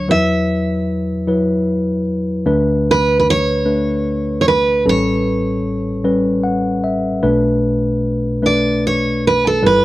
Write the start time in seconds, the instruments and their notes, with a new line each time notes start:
Already playing: tine electric piano D4 C#5, steel-string acoustic guitar C#5
0.08 tine electric piano E2 F#3 E4 B4, steel-string acoustic guitar E5
1.27 tine electric piano F#3 E4 B4
2.46 tine electric piano D2 D3 A3 D4 B4
2.91 steel-string acoustic guitar B4
3.19 steel-string acoustic guitar B4
3.30 steel-string acoustic guitar C#5
3.65 tine electric piano A3 D4 B4
4.41 steel-string acoustic guitar C#5
4.48 steel-string acoustic guitar B4
4.86 tine electric piano A1 A2 G3 C#4 A4, steel-string acoustic guitar C#5
6.04 tine electric piano G3 C#4 B4
6.44 tine electric piano F#5
6.84 tine electric piano E5
7.23 tine electric piano B1 B2 A3 D4 B4
8.42 tine electric piano A3 D4 B4, steel-string acoustic guitar D5
8.87 steel-string acoustic guitar C#5
9.27 steel-string acoustic guitar B4
9.47 steel-string acoustic guitar A4
9.62 tine electric piano G1 G2 G3 E4 B4
9.66 steel-string acoustic guitar B4